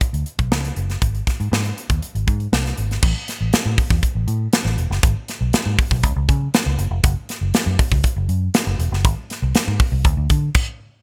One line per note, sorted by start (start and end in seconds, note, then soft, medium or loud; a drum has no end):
0.01 kick medium
0.01 closed hi-hat medium
0.13 0.23 D2 medium
0.13 closed hi-hat soft
0.26 closed hi-hat medium
0.39 0.52 B1 medium
0.39 kick medium
0.39 closed hi-hat soft
0.52 0.70 C#2 medium
0.52 snare loud
0.65 closed hi-hat medium
0.76 0.95 F#1 medium
0.76 closed hi-hat medium
0.90 snare soft
0.90 closed hi-hat soft
1.02 1.21 G#1 medium
1.02 kick loud
1.02 closed hi-hat medium
1.15 closed hi-hat soft
1.27 kick medium
1.27 snare soft
1.27 closed hi-hat medium
1.40 1.49 G#2 medium
1.40 closed hi-hat soft
1.52 1.71 G#2 loud
1.52 snare medium
1.64 closed hi-hat soft
1.78 closed hi-hat medium
1.89 1.99 D#2 medium
1.89 kick medium
1.89 closed hi-hat medium
2.02 closed hi-hat medium
2.15 2.24 G#1 medium
2.15 closed hi-hat soft
2.27 2.46 G#2 medium
2.27 kick medium
2.27 closed hi-hat medium
2.40 closed hi-hat soft
2.52 2.71 C2 medium
2.52 snare loud
2.66 snare soft
2.66 closed hi-hat soft
2.77 2.97 G#1 medium
2.77 closed hi-hat medium
2.91 snare soft
2.91 closed hi-hat soft
3.02 3.12 A1 loud
3.02 kick loud
3.02 crash loud
3.28 snare soft
3.28 closed hi-hat medium
3.41 3.50 A1 medium
3.53 muted fingered electric bass stroke soft
3.53 snare loud
3.53 closed hi-hat loud
3.66 3.75 A2 medium
3.78 kick medium
3.78 open hi-hat medium
3.90 4.00 E2 medium
3.90 kick loud
4.03 kick medium
4.03 closed hi-hat medium
4.15 4.25 A1 medium
4.28 4.47 A2 medium
4.28 closed hi-hat medium
4.53 snare loud
4.53 closed hi-hat loud
4.65 4.75 A1 medium
4.65 snare soft
4.77 4.87 E1 medium
4.77 closed hi-hat medium
4.90 5.00 F#1 medium
4.90 snare soft
5.03 5.12 G#1 loud
5.03 kick loud
5.03 closed hi-hat medium
5.28 snare soft
5.28 closed hi-hat medium
5.41 5.50 B1 medium
5.53 snare loud
5.53 closed hi-hat loud
5.66 5.75 G#2 medium
5.79 kick medium
5.79 open hi-hat medium
5.91 6.03 B1 medium
5.91 kick loud
6.03 6.13 C#2 loud
6.03 kick medium
6.03 closed hi-hat loud
6.16 6.26 C#2 medium
6.29 6.47 C#3 loud
6.29 kick medium
6.29 closed hi-hat medium
6.54 snare loud
6.54 closed hi-hat medium
6.66 6.76 C#2 medium
6.78 6.88 F#1 loud
6.78 closed hi-hat medium
6.91 7.00 F1 medium
7.03 7.13 F#1 loud
7.03 kick loud
7.03 closed hi-hat loud
7.29 snare soft
7.29 closed hi-hat medium
7.41 7.51 F#1 medium
7.54 muted fingered electric bass stroke soft
7.54 snare loud
7.54 closed hi-hat medium
7.66 7.76 F#2 medium
7.79 kick medium
7.79 open hi-hat medium
7.91 8.01 C#2 medium
7.91 kick loud
8.04 kick medium
8.04 closed hi-hat medium
8.16 8.26 F#1 loud
8.29 8.48 F#2 medium
8.29 closed hi-hat medium
8.54 snare loud
8.54 closed hi-hat loud
8.67 8.76 F#1 loud
8.79 8.88 E1 medium
8.79 closed hi-hat medium
8.92 9.04 F#1 medium
8.92 snare soft
9.04 9.14 G#1 loud
9.04 kick loud
9.04 closed hi-hat medium
9.30 snare soft
9.30 closed hi-hat medium
9.42 9.52 C2 medium
9.54 muted fingered electric bass stroke soft
9.54 snare loud
9.54 closed hi-hat loud
9.68 9.77 G#2 medium
9.80 kick loud
9.80 open hi-hat medium
9.92 10.05 C2 loud
10.04 10.14 D2 loud
10.04 kick medium
10.04 closed hi-hat medium
10.17 10.27 D2 medium
10.30 10.48 D3 medium
10.30 kick medium
10.30 closed hi-hat medium
10.54 kick loud
10.54 crash loud